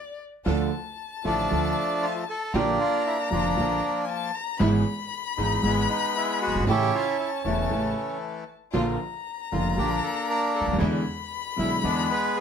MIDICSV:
0, 0, Header, 1, 6, 480
1, 0, Start_track
1, 0, Key_signature, -1, "minor"
1, 0, Tempo, 516796
1, 431, Time_signature, 4, 2, 24, 8
1, 11521, End_track
2, 0, Start_track
2, 0, Title_t, "Violin"
2, 0, Program_c, 0, 40
2, 0, Note_on_c, 0, 74, 96
2, 183, Note_off_c, 0, 74, 0
2, 433, Note_on_c, 0, 81, 93
2, 2322, Note_off_c, 0, 81, 0
2, 2364, Note_on_c, 0, 82, 104
2, 3705, Note_off_c, 0, 82, 0
2, 3742, Note_on_c, 0, 80, 75
2, 3798, Note_on_c, 0, 81, 98
2, 3812, Note_off_c, 0, 80, 0
2, 4036, Note_on_c, 0, 82, 110
2, 4050, Note_off_c, 0, 81, 0
2, 4266, Note_off_c, 0, 82, 0
2, 4271, Note_on_c, 0, 83, 123
2, 6197, Note_on_c, 0, 81, 95
2, 6211, Note_off_c, 0, 83, 0
2, 7876, Note_off_c, 0, 81, 0
2, 8122, Note_on_c, 0, 82, 104
2, 10039, Note_on_c, 0, 83, 121
2, 10053, Note_off_c, 0, 82, 0
2, 11521, Note_off_c, 0, 83, 0
2, 11521, End_track
3, 0, Start_track
3, 0, Title_t, "Bandoneon"
3, 0, Program_c, 1, 23
3, 1155, Note_on_c, 1, 57, 73
3, 1158, Note_on_c, 1, 53, 69
3, 1176, Note_on_c, 1, 62, 95
3, 1881, Note_on_c, 1, 65, 102
3, 1909, Note_off_c, 1, 62, 0
3, 1989, Note_off_c, 1, 65, 0
3, 2081, Note_off_c, 1, 57, 0
3, 2083, Note_off_c, 1, 53, 0
3, 2134, Note_on_c, 1, 69, 109
3, 2350, Note_off_c, 1, 69, 0
3, 2368, Note_on_c, 1, 62, 75
3, 2369, Note_on_c, 1, 58, 85
3, 2369, Note_on_c, 1, 67, 102
3, 2587, Note_off_c, 1, 67, 0
3, 2602, Note_on_c, 1, 65, 105
3, 2824, Note_off_c, 1, 65, 0
3, 2849, Note_on_c, 1, 64, 89
3, 2955, Note_off_c, 1, 64, 0
3, 3065, Note_off_c, 1, 62, 0
3, 3068, Note_off_c, 1, 58, 0
3, 3079, Note_on_c, 1, 62, 88
3, 3082, Note_on_c, 1, 58, 60
3, 3084, Note_on_c, 1, 53, 65
3, 3762, Note_off_c, 1, 62, 0
3, 4003, Note_off_c, 1, 58, 0
3, 4004, Note_off_c, 1, 53, 0
3, 4990, Note_on_c, 1, 63, 82
3, 5216, Note_off_c, 1, 63, 0
3, 5237, Note_on_c, 1, 64, 94
3, 5254, Note_on_c, 1, 59, 78
3, 5256, Note_on_c, 1, 56, 75
3, 5459, Note_off_c, 1, 64, 0
3, 5481, Note_on_c, 1, 63, 88
3, 5701, Note_off_c, 1, 63, 0
3, 5728, Note_on_c, 1, 64, 100
3, 5944, Note_off_c, 1, 64, 0
3, 5961, Note_on_c, 1, 66, 115
3, 6166, Note_off_c, 1, 56, 0
3, 6166, Note_off_c, 1, 59, 0
3, 6181, Note_off_c, 1, 66, 0
3, 6218, Note_on_c, 1, 67, 117
3, 6228, Note_on_c, 1, 61, 82
3, 6230, Note_on_c, 1, 64, 82
3, 6452, Note_off_c, 1, 67, 0
3, 6452, Note_on_c, 1, 65, 110
3, 6556, Note_off_c, 1, 65, 0
3, 6666, Note_off_c, 1, 64, 0
3, 6680, Note_on_c, 1, 64, 90
3, 6786, Note_off_c, 1, 64, 0
3, 6896, Note_off_c, 1, 61, 0
3, 6910, Note_on_c, 1, 61, 78
3, 6917, Note_on_c, 1, 52, 65
3, 6926, Note_on_c, 1, 57, 61
3, 7595, Note_off_c, 1, 61, 0
3, 7839, Note_off_c, 1, 52, 0
3, 7843, Note_off_c, 1, 57, 0
3, 8846, Note_on_c, 1, 65, 77
3, 9084, Note_on_c, 1, 67, 94
3, 9087, Note_on_c, 1, 58, 75
3, 9088, Note_off_c, 1, 65, 0
3, 9095, Note_on_c, 1, 62, 77
3, 9190, Note_off_c, 1, 67, 0
3, 9319, Note_on_c, 1, 69, 88
3, 9540, Note_off_c, 1, 69, 0
3, 9565, Note_on_c, 1, 70, 104
3, 9783, Note_off_c, 1, 70, 0
3, 9802, Note_on_c, 1, 69, 91
3, 9908, Note_off_c, 1, 69, 0
3, 10002, Note_off_c, 1, 58, 0
3, 10007, Note_off_c, 1, 62, 0
3, 10764, Note_on_c, 1, 64, 85
3, 10981, Note_off_c, 1, 64, 0
3, 10997, Note_on_c, 1, 59, 75
3, 10998, Note_on_c, 1, 62, 94
3, 10999, Note_on_c, 1, 56, 75
3, 11217, Note_off_c, 1, 62, 0
3, 11250, Note_on_c, 1, 71, 107
3, 11478, Note_on_c, 1, 68, 96
3, 11486, Note_off_c, 1, 71, 0
3, 11521, Note_off_c, 1, 56, 0
3, 11521, Note_off_c, 1, 59, 0
3, 11521, Note_off_c, 1, 68, 0
3, 11521, End_track
4, 0, Start_track
4, 0, Title_t, "String section"
4, 0, Program_c, 2, 48
4, 427, Note_on_c, 2, 62, 80
4, 429, Note_on_c, 2, 65, 71
4, 431, Note_on_c, 2, 69, 91
4, 631, Note_off_c, 2, 62, 0
4, 632, Note_off_c, 2, 65, 0
4, 634, Note_off_c, 2, 69, 0
4, 1147, Note_on_c, 2, 62, 52
4, 1152, Note_on_c, 2, 65, 49
4, 1154, Note_on_c, 2, 69, 58
4, 1353, Note_off_c, 2, 62, 0
4, 1356, Note_off_c, 2, 65, 0
4, 1357, Note_off_c, 2, 69, 0
4, 1405, Note_on_c, 2, 69, 64
4, 1406, Note_on_c, 2, 62, 55
4, 1408, Note_on_c, 2, 65, 50
4, 1603, Note_off_c, 2, 62, 0
4, 1603, Note_off_c, 2, 69, 0
4, 1604, Note_off_c, 2, 65, 0
4, 2359, Note_on_c, 2, 62, 76
4, 2359, Note_on_c, 2, 65, 91
4, 2360, Note_on_c, 2, 58, 80
4, 2560, Note_off_c, 2, 62, 0
4, 2560, Note_off_c, 2, 65, 0
4, 2561, Note_off_c, 2, 58, 0
4, 3075, Note_on_c, 2, 58, 55
4, 3079, Note_on_c, 2, 62, 50
4, 3083, Note_on_c, 2, 65, 53
4, 3278, Note_off_c, 2, 58, 0
4, 3281, Note_off_c, 2, 62, 0
4, 3283, Note_off_c, 2, 65, 0
4, 3317, Note_on_c, 2, 58, 58
4, 3319, Note_on_c, 2, 65, 68
4, 3323, Note_on_c, 2, 62, 53
4, 3519, Note_off_c, 2, 58, 0
4, 3521, Note_off_c, 2, 65, 0
4, 3523, Note_off_c, 2, 62, 0
4, 4267, Note_on_c, 2, 59, 77
4, 4268, Note_on_c, 2, 56, 75
4, 4269, Note_on_c, 2, 64, 93
4, 4474, Note_off_c, 2, 56, 0
4, 4474, Note_off_c, 2, 59, 0
4, 4475, Note_off_c, 2, 64, 0
4, 4988, Note_on_c, 2, 56, 53
4, 4994, Note_on_c, 2, 59, 49
4, 4997, Note_on_c, 2, 64, 62
4, 5193, Note_off_c, 2, 56, 0
4, 5197, Note_off_c, 2, 59, 0
4, 5198, Note_off_c, 2, 64, 0
4, 5231, Note_on_c, 2, 56, 62
4, 5232, Note_on_c, 2, 59, 53
4, 5237, Note_on_c, 2, 64, 61
4, 5434, Note_off_c, 2, 56, 0
4, 5435, Note_off_c, 2, 59, 0
4, 5437, Note_off_c, 2, 64, 0
4, 6184, Note_on_c, 2, 57, 81
4, 6186, Note_on_c, 2, 61, 75
4, 6190, Note_on_c, 2, 64, 88
4, 6390, Note_off_c, 2, 57, 0
4, 6391, Note_off_c, 2, 61, 0
4, 6393, Note_off_c, 2, 64, 0
4, 6901, Note_on_c, 2, 61, 45
4, 6902, Note_on_c, 2, 57, 50
4, 6906, Note_on_c, 2, 64, 57
4, 7109, Note_off_c, 2, 57, 0
4, 7109, Note_off_c, 2, 61, 0
4, 7111, Note_off_c, 2, 64, 0
4, 7149, Note_on_c, 2, 57, 55
4, 7152, Note_on_c, 2, 61, 51
4, 7152, Note_on_c, 2, 64, 62
4, 7352, Note_off_c, 2, 57, 0
4, 7354, Note_off_c, 2, 61, 0
4, 7354, Note_off_c, 2, 64, 0
4, 8107, Note_on_c, 2, 62, 71
4, 8110, Note_on_c, 2, 58, 71
4, 8111, Note_on_c, 2, 65, 89
4, 8313, Note_off_c, 2, 62, 0
4, 8314, Note_off_c, 2, 58, 0
4, 8315, Note_off_c, 2, 65, 0
4, 8833, Note_on_c, 2, 58, 54
4, 8839, Note_on_c, 2, 62, 43
4, 8841, Note_on_c, 2, 65, 57
4, 9036, Note_off_c, 2, 58, 0
4, 9039, Note_off_c, 2, 62, 0
4, 9040, Note_off_c, 2, 65, 0
4, 9075, Note_on_c, 2, 58, 60
4, 9081, Note_on_c, 2, 65, 63
4, 9083, Note_on_c, 2, 62, 51
4, 9277, Note_off_c, 2, 58, 0
4, 9280, Note_off_c, 2, 65, 0
4, 9281, Note_off_c, 2, 62, 0
4, 10024, Note_on_c, 2, 62, 72
4, 10026, Note_on_c, 2, 56, 83
4, 10027, Note_on_c, 2, 64, 85
4, 10231, Note_off_c, 2, 56, 0
4, 10231, Note_off_c, 2, 62, 0
4, 10232, Note_off_c, 2, 64, 0
4, 10757, Note_on_c, 2, 62, 45
4, 10759, Note_on_c, 2, 56, 55
4, 10759, Note_on_c, 2, 64, 59
4, 10955, Note_off_c, 2, 62, 0
4, 10956, Note_off_c, 2, 56, 0
4, 10956, Note_off_c, 2, 64, 0
4, 10980, Note_on_c, 2, 56, 56
4, 10984, Note_on_c, 2, 62, 58
4, 10984, Note_on_c, 2, 64, 67
4, 11186, Note_off_c, 2, 56, 0
4, 11188, Note_off_c, 2, 62, 0
4, 11188, Note_off_c, 2, 64, 0
4, 11521, End_track
5, 0, Start_track
5, 0, Title_t, "Grand piano"
5, 0, Program_c, 3, 0
5, 424, Note_on_c, 3, 65, 79
5, 427, Note_on_c, 3, 38, 87
5, 427, Note_on_c, 3, 50, 89
5, 428, Note_on_c, 3, 53, 67
5, 429, Note_on_c, 3, 57, 73
5, 630, Note_off_c, 3, 65, 0
5, 631, Note_off_c, 3, 38, 0
5, 632, Note_off_c, 3, 50, 0
5, 632, Note_off_c, 3, 53, 0
5, 633, Note_off_c, 3, 57, 0
5, 1160, Note_on_c, 3, 50, 51
5, 1160, Note_on_c, 3, 53, 50
5, 1161, Note_on_c, 3, 33, 61
5, 1161, Note_on_c, 3, 57, 51
5, 1161, Note_on_c, 3, 65, 59
5, 1163, Note_on_c, 3, 45, 59
5, 1360, Note_off_c, 3, 33, 0
5, 1360, Note_off_c, 3, 50, 0
5, 1360, Note_off_c, 3, 53, 0
5, 1360, Note_off_c, 3, 57, 0
5, 1360, Note_off_c, 3, 65, 0
5, 1361, Note_off_c, 3, 45, 0
5, 1394, Note_on_c, 3, 38, 60
5, 1396, Note_on_c, 3, 50, 65
5, 1400, Note_on_c, 3, 53, 47
5, 1400, Note_on_c, 3, 57, 43
5, 1405, Note_on_c, 3, 65, 59
5, 1597, Note_off_c, 3, 38, 0
5, 1599, Note_off_c, 3, 50, 0
5, 1600, Note_off_c, 3, 53, 0
5, 1600, Note_off_c, 3, 57, 0
5, 1603, Note_off_c, 3, 65, 0
5, 2368, Note_on_c, 3, 46, 89
5, 2369, Note_on_c, 3, 50, 71
5, 2369, Note_on_c, 3, 53, 69
5, 2372, Note_on_c, 3, 34, 96
5, 2379, Note_on_c, 3, 58, 73
5, 2381, Note_on_c, 3, 65, 87
5, 2564, Note_off_c, 3, 46, 0
5, 2565, Note_off_c, 3, 50, 0
5, 2565, Note_off_c, 3, 53, 0
5, 2566, Note_off_c, 3, 34, 0
5, 2570, Note_off_c, 3, 58, 0
5, 2571, Note_off_c, 3, 65, 0
5, 3070, Note_on_c, 3, 41, 61
5, 3071, Note_on_c, 3, 50, 53
5, 3071, Note_on_c, 3, 53, 50
5, 3072, Note_on_c, 3, 29, 63
5, 3077, Note_on_c, 3, 58, 54
5, 3079, Note_on_c, 3, 65, 59
5, 3276, Note_off_c, 3, 41, 0
5, 3277, Note_off_c, 3, 29, 0
5, 3277, Note_off_c, 3, 50, 0
5, 3277, Note_off_c, 3, 53, 0
5, 3280, Note_off_c, 3, 58, 0
5, 3281, Note_off_c, 3, 65, 0
5, 3309, Note_on_c, 3, 34, 62
5, 3310, Note_on_c, 3, 50, 54
5, 3313, Note_on_c, 3, 53, 49
5, 3316, Note_on_c, 3, 65, 58
5, 3317, Note_on_c, 3, 46, 62
5, 3321, Note_on_c, 3, 58, 50
5, 3515, Note_off_c, 3, 34, 0
5, 3516, Note_off_c, 3, 50, 0
5, 3518, Note_off_c, 3, 53, 0
5, 3519, Note_off_c, 3, 65, 0
5, 3520, Note_off_c, 3, 46, 0
5, 3522, Note_off_c, 3, 58, 0
5, 4265, Note_on_c, 3, 52, 78
5, 4265, Note_on_c, 3, 56, 73
5, 4266, Note_on_c, 3, 32, 91
5, 4266, Note_on_c, 3, 44, 92
5, 4273, Note_on_c, 3, 59, 76
5, 4275, Note_on_c, 3, 68, 88
5, 4473, Note_off_c, 3, 32, 0
5, 4473, Note_off_c, 3, 44, 0
5, 4473, Note_off_c, 3, 52, 0
5, 4473, Note_off_c, 3, 56, 0
5, 4477, Note_off_c, 3, 59, 0
5, 4478, Note_off_c, 3, 68, 0
5, 4995, Note_on_c, 3, 56, 49
5, 4997, Note_on_c, 3, 52, 50
5, 4999, Note_on_c, 3, 32, 69
5, 4999, Note_on_c, 3, 59, 49
5, 4999, Note_on_c, 3, 68, 59
5, 5002, Note_on_c, 3, 44, 66
5, 5197, Note_off_c, 3, 56, 0
5, 5198, Note_off_c, 3, 52, 0
5, 5199, Note_off_c, 3, 32, 0
5, 5199, Note_off_c, 3, 59, 0
5, 5199, Note_off_c, 3, 68, 0
5, 5200, Note_off_c, 3, 44, 0
5, 5226, Note_on_c, 3, 44, 63
5, 5227, Note_on_c, 3, 52, 50
5, 5230, Note_on_c, 3, 32, 59
5, 5230, Note_on_c, 3, 56, 52
5, 5230, Note_on_c, 3, 68, 57
5, 5236, Note_on_c, 3, 59, 48
5, 5432, Note_off_c, 3, 44, 0
5, 5433, Note_off_c, 3, 52, 0
5, 5434, Note_off_c, 3, 32, 0
5, 5434, Note_off_c, 3, 56, 0
5, 5434, Note_off_c, 3, 68, 0
5, 5437, Note_off_c, 3, 59, 0
5, 6026, Note_on_c, 3, 30, 51
5, 6078, Note_on_c, 3, 31, 65
5, 6080, Note_off_c, 3, 30, 0
5, 6136, Note_off_c, 3, 31, 0
5, 6154, Note_on_c, 3, 32, 73
5, 6199, Note_on_c, 3, 52, 72
5, 6202, Note_on_c, 3, 45, 88
5, 6204, Note_off_c, 3, 32, 0
5, 6205, Note_on_c, 3, 64, 81
5, 6207, Note_on_c, 3, 33, 89
5, 6209, Note_on_c, 3, 49, 69
5, 6210, Note_on_c, 3, 57, 69
5, 6397, Note_off_c, 3, 52, 0
5, 6399, Note_off_c, 3, 45, 0
5, 6400, Note_off_c, 3, 64, 0
5, 6402, Note_off_c, 3, 33, 0
5, 6402, Note_off_c, 3, 49, 0
5, 6403, Note_off_c, 3, 57, 0
5, 6915, Note_on_c, 3, 49, 51
5, 6920, Note_on_c, 3, 52, 45
5, 6921, Note_on_c, 3, 40, 62
5, 6922, Note_on_c, 3, 64, 63
5, 6924, Note_on_c, 3, 28, 60
5, 6925, Note_on_c, 3, 57, 44
5, 7115, Note_off_c, 3, 49, 0
5, 7118, Note_off_c, 3, 52, 0
5, 7119, Note_off_c, 3, 40, 0
5, 7119, Note_off_c, 3, 64, 0
5, 7120, Note_off_c, 3, 28, 0
5, 7120, Note_off_c, 3, 57, 0
5, 7153, Note_on_c, 3, 49, 53
5, 7153, Note_on_c, 3, 52, 48
5, 7155, Note_on_c, 3, 33, 62
5, 7158, Note_on_c, 3, 57, 49
5, 7159, Note_on_c, 3, 45, 61
5, 7167, Note_on_c, 3, 64, 57
5, 7355, Note_off_c, 3, 49, 0
5, 7355, Note_off_c, 3, 52, 0
5, 7356, Note_off_c, 3, 33, 0
5, 7357, Note_off_c, 3, 57, 0
5, 7358, Note_off_c, 3, 45, 0
5, 7361, Note_off_c, 3, 64, 0
5, 8111, Note_on_c, 3, 50, 73
5, 8111, Note_on_c, 3, 53, 73
5, 8115, Note_on_c, 3, 34, 90
5, 8118, Note_on_c, 3, 46, 85
5, 8118, Note_on_c, 3, 58, 70
5, 8120, Note_on_c, 3, 65, 84
5, 8315, Note_off_c, 3, 50, 0
5, 8315, Note_off_c, 3, 53, 0
5, 8317, Note_off_c, 3, 34, 0
5, 8318, Note_off_c, 3, 46, 0
5, 8318, Note_off_c, 3, 58, 0
5, 8319, Note_off_c, 3, 65, 0
5, 8841, Note_on_c, 3, 50, 53
5, 8844, Note_on_c, 3, 58, 50
5, 8845, Note_on_c, 3, 41, 62
5, 8846, Note_on_c, 3, 53, 44
5, 8848, Note_on_c, 3, 65, 58
5, 8849, Note_on_c, 3, 29, 60
5, 9040, Note_off_c, 3, 50, 0
5, 9041, Note_off_c, 3, 58, 0
5, 9042, Note_off_c, 3, 41, 0
5, 9043, Note_off_c, 3, 53, 0
5, 9043, Note_off_c, 3, 65, 0
5, 9044, Note_off_c, 3, 29, 0
5, 9070, Note_on_c, 3, 50, 49
5, 9070, Note_on_c, 3, 53, 45
5, 9073, Note_on_c, 3, 46, 61
5, 9073, Note_on_c, 3, 65, 56
5, 9075, Note_on_c, 3, 34, 58
5, 9080, Note_on_c, 3, 58, 44
5, 9274, Note_off_c, 3, 50, 0
5, 9274, Note_off_c, 3, 53, 0
5, 9276, Note_off_c, 3, 46, 0
5, 9276, Note_off_c, 3, 65, 0
5, 9277, Note_off_c, 3, 34, 0
5, 9279, Note_off_c, 3, 58, 0
5, 9855, Note_on_c, 3, 37, 49
5, 9901, Note_on_c, 3, 38, 66
5, 9915, Note_off_c, 3, 37, 0
5, 9962, Note_on_c, 3, 39, 77
5, 9968, Note_off_c, 3, 38, 0
5, 10015, Note_on_c, 3, 40, 86
5, 10016, Note_on_c, 3, 50, 82
5, 10017, Note_on_c, 3, 52, 96
5, 10017, Note_on_c, 3, 59, 73
5, 10018, Note_on_c, 3, 56, 73
5, 10019, Note_on_c, 3, 64, 80
5, 10028, Note_off_c, 3, 39, 0
5, 10226, Note_off_c, 3, 40, 0
5, 10226, Note_off_c, 3, 50, 0
5, 10227, Note_off_c, 3, 52, 0
5, 10227, Note_off_c, 3, 56, 0
5, 10227, Note_off_c, 3, 59, 0
5, 10228, Note_off_c, 3, 64, 0
5, 10739, Note_on_c, 3, 56, 50
5, 10741, Note_on_c, 3, 50, 54
5, 10747, Note_on_c, 3, 47, 62
5, 10748, Note_on_c, 3, 35, 69
5, 10748, Note_on_c, 3, 59, 48
5, 10748, Note_on_c, 3, 64, 63
5, 10946, Note_off_c, 3, 56, 0
5, 10947, Note_off_c, 3, 50, 0
5, 10950, Note_off_c, 3, 47, 0
5, 10951, Note_off_c, 3, 35, 0
5, 10951, Note_off_c, 3, 59, 0
5, 10951, Note_off_c, 3, 64, 0
5, 10985, Note_on_c, 3, 50, 54
5, 10988, Note_on_c, 3, 52, 62
5, 10989, Note_on_c, 3, 59, 48
5, 10992, Note_on_c, 3, 64, 58
5, 10994, Note_on_c, 3, 56, 52
5, 10995, Note_on_c, 3, 40, 61
5, 11188, Note_off_c, 3, 50, 0
5, 11190, Note_off_c, 3, 52, 0
5, 11191, Note_off_c, 3, 59, 0
5, 11192, Note_off_c, 3, 64, 0
5, 11193, Note_off_c, 3, 56, 0
5, 11194, Note_off_c, 3, 40, 0
5, 11521, End_track
6, 0, Start_track
6, 0, Title_t, "Upright bass"
6, 0, Program_c, 4, 32
6, 428, Note_on_c, 4, 38, 89
6, 632, Note_off_c, 4, 38, 0
6, 1161, Note_on_c, 4, 33, 64
6, 1360, Note_off_c, 4, 33, 0
6, 1410, Note_on_c, 4, 38, 67
6, 1605, Note_off_c, 4, 38, 0
6, 2359, Note_on_c, 4, 34, 106
6, 2560, Note_off_c, 4, 34, 0
6, 3083, Note_on_c, 4, 29, 65
6, 3282, Note_off_c, 4, 29, 0
6, 3329, Note_on_c, 4, 34, 68
6, 3526, Note_off_c, 4, 34, 0
6, 4278, Note_on_c, 4, 32, 105
6, 4479, Note_off_c, 4, 32, 0
6, 5000, Note_on_c, 4, 32, 66
6, 5200, Note_off_c, 4, 32, 0
6, 5236, Note_on_c, 4, 32, 68
6, 5437, Note_off_c, 4, 32, 0
6, 6012, Note_on_c, 4, 30, 51
6, 6073, Note_off_c, 4, 30, 0
6, 6086, Note_on_c, 4, 31, 63
6, 6125, Note_off_c, 4, 31, 0
6, 6131, Note_on_c, 4, 32, 71
6, 6192, Note_off_c, 4, 32, 0
6, 6196, Note_on_c, 4, 33, 98
6, 6396, Note_off_c, 4, 33, 0
6, 6918, Note_on_c, 4, 28, 65
6, 7117, Note_off_c, 4, 28, 0
6, 7153, Note_on_c, 4, 33, 63
6, 7354, Note_off_c, 4, 33, 0
6, 8115, Note_on_c, 4, 34, 94
6, 8317, Note_off_c, 4, 34, 0
6, 8846, Note_on_c, 4, 29, 63
6, 9042, Note_off_c, 4, 29, 0
6, 9077, Note_on_c, 4, 34, 63
6, 9278, Note_off_c, 4, 34, 0
6, 9856, Note_on_c, 4, 37, 53
6, 9907, Note_off_c, 4, 37, 0
6, 9912, Note_on_c, 4, 38, 64
6, 9970, Note_off_c, 4, 38, 0
6, 9975, Note_on_c, 4, 39, 75
6, 10035, Note_off_c, 4, 39, 0
6, 10039, Note_on_c, 4, 40, 97
6, 10238, Note_off_c, 4, 40, 0
6, 10763, Note_on_c, 4, 35, 66
6, 10958, Note_off_c, 4, 35, 0
6, 10998, Note_on_c, 4, 40, 66
6, 11195, Note_off_c, 4, 40, 0
6, 11521, End_track
0, 0, End_of_file